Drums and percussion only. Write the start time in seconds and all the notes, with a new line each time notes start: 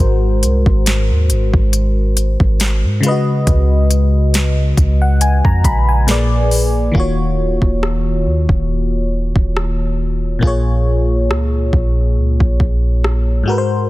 0.43 closed hi-hat
0.66 kick
0.86 snare, closed hi-hat
1.30 closed hi-hat
1.54 kick
1.73 closed hi-hat
2.17 closed hi-hat
2.40 kick
2.60 snare, closed hi-hat
3.03 closed hi-hat
3.47 kick, closed hi-hat
3.91 closed hi-hat
4.34 snare, closed hi-hat
4.77 kick, closed hi-hat
5.21 closed hi-hat
5.45 kick
5.64 kick, closed hi-hat
6.08 snare, closed hi-hat
6.51 open hi-hat
6.95 kick
7.62 kick
7.83 cross-stick
8.49 kick
9.36 kick
9.57 cross-stick
10.43 kick
11.31 cross-stick
11.73 kick
12.40 kick
12.60 kick
13.04 cross-stick